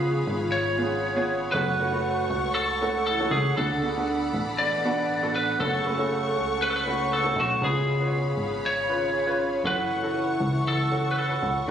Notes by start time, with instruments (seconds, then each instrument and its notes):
Already playing: analog synth bass C#2, grand piano C#3 B3 C#4 F4 G#4 B4, french horn section F3 F4, lead electric guitar G#4, string section G#4 C#5 F5 B5
0.27 analog synth bass G#1
0.52 lead electric guitar C#5
0.78 grand piano B3 C#4 F4 G#4
1.16 grand piano B3 C#4 F4 G#4
1.52 analog synth bass F#1, french horn section F#3 F#4, grand piano A3 C#4 F#4 A4, string section A4 F#5 C#6, lead electric guitar B4
1.80 grand piano A3 C#4 F#4 B4
1.92 grand piano A3 C#4 F#4 B4
2.30 analog synth bass C#2
2.55 lead electric guitar A4
2.82 grand piano A3 C#4 F#4 A4
3.07 french horn section E3 E4, lead electric guitar A4
3.20 grand piano A3 C#4 F#4 A4
3.31 analog synth bass C#2, lead electric guitar G#4
3.57 analog synth bass D2, french horn section D3 D4, grand piano D3 B3 D4 F#4 A4, lead electric guitar A4, string section D5 B5
3.83 grand piano B3 D4 F#4 G#4
3.96 grand piano B3 D4 F#4 A4
4.33 analog synth bass A1
4.58 french horn section B2 B3, lead electric guitar D5
4.85 grand piano B3 D4 F#4 A4
5.22 grand piano B3 D4 F#4 A4
5.36 lead electric guitar B4
5.59 analog synth bass F#1, french horn section C#3 C#4, grand piano A3 C#4 F#4 A4, lead electric guitar A4, string section C#5 C#6
5.86 grand piano A3 C#4 F#4 B4
5.98 grand piano A3 C#4 F#4 A4
6.35 analog synth bass C#2
6.62 lead electric guitar B4
6.70 lead electric guitar A4
6.76 lead electric guitar B4
6.86 grand piano A3 C#4 F#4 B4
7.12 french horn section C#3 C#4, lead electric guitar A4
7.24 grand piano A3 C#4 F#4 A4
7.36 analog synth bass B1, lead electric guitar F#4
7.61 analog synth bass C#2, french horn section B2 B3, grand piano C#3 C#4 F4 B4, string section G#4 C#5 F5 B5, lead electric guitar G#4
8.00 grand piano C#4 F4 B4
8.06 grand piano C#5
8.37 analog synth bass G#1
8.66 lead electric guitar C#5
8.89 french horn section C#3 C#4, grand piano C#4 F4 B4
9.27 grand piano C#4 F4 B4
9.64 analog synth bass F#1, french horn section E3 E4, grand piano C#4 F#4 A4, string section A4 F#5 C#6, lead electric guitar B4
10.02 grand piano C#4 F#4 A4
10.40 analog synth bass C#2
10.68 lead electric guitar A4
10.91 grand piano C#4 F#4 A4
11.11 lead electric guitar B4
11.18 lead electric guitar A4
11.29 grand piano C#4 F#4 B4
11.43 analog synth bass C#2
11.68 grand piano D4